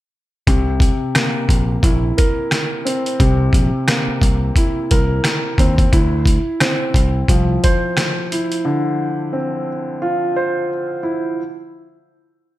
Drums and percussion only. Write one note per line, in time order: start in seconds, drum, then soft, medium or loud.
0.47 kick loud
0.47 closed hi-hat medium
0.80 kick loud
0.80 closed hi-hat medium
1.15 cross-stick loud
1.15 snare loud
1.15 closed hi-hat loud
1.49 kick medium
1.49 closed hi-hat medium
1.83 kick loud
1.83 closed hi-hat medium
2.18 kick loud
2.18 closed hi-hat medium
2.51 cross-stick medium
2.51 snare loud
2.51 closed hi-hat medium
2.87 closed hi-hat medium
3.06 closed hi-hat soft
3.20 kick loud
3.20 closed hi-hat medium
3.53 kick medium
3.53 closed hi-hat medium
3.88 cross-stick loud
3.88 snare loud
3.88 closed hi-hat loud
4.22 kick medium
4.22 closed hi-hat medium
4.56 kick loud
4.56 closed hi-hat loud
4.91 kick loud
4.91 closed hi-hat medium
5.24 cross-stick medium
5.24 snare loud
5.24 closed hi-hat medium
5.58 kick loud
5.58 closed hi-hat medium
5.78 kick loud
5.78 closed hi-hat medium
5.93 kick loud
5.93 closed hi-hat medium
6.26 kick loud
6.26 closed hi-hat medium
6.60 cross-stick loud
6.60 snare loud
6.60 closed hi-hat loud
6.94 kick medium
6.94 closed hi-hat medium
7.28 kick loud
7.28 closed hi-hat loud
7.64 kick medium
7.64 closed hi-hat medium
7.97 cross-stick medium
7.97 snare loud
7.97 closed hi-hat medium
8.32 closed hi-hat medium
8.52 closed hi-hat soft